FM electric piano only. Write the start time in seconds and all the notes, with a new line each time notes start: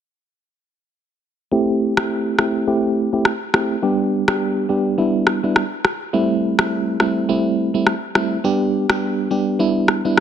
1.52 A3 C4 E4 G4
1.97 A3 C4 E4 G4
2.38 A3 C4 E4 G4
2.67 A3 C4 E4 G4
3.13 A3 C4 E4 G4
3.54 A3 C4 E4 G4
3.82 G3 B3 D4 G4
4.28 G3 B3 D4 G4
4.69 G3 B3 D4 G4
4.98 G3 B3 D4 E4
5.43 G3 B3 D4 E4
6.13 G3 A3 C4 E4
6.59 G3 A3 C4 E4
7.00 G3 A3 C4 E4
7.29 G3 A3 C4 E4
7.74 G3 A3 C4 E4
8.15 G3 A3 C4 E4
8.44 G3 B3 D4 G4
8.90 G3 B3 D4 G4
9.30 G3 B3 D4 G4
9.59 G3 B3 D4 E4
10.05 G3 B3 D4 E4